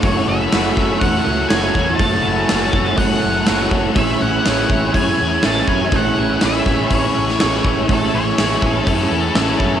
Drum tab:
HH |o---o---o---o---|o---o---o---o---|o---o---o---o---|o---o---o---o---|
SD |----o-o-----o---|----o-------o---|----o-------o---|----o-o----oo---|
BD |o-----o-o-----o-|o-----o-o-----o-|o-----o-o-----o-|o-----o-o-----o-|

HH |o---o---o---o---|
SD |----o-------o---|
BD |o-----o-o-----o-|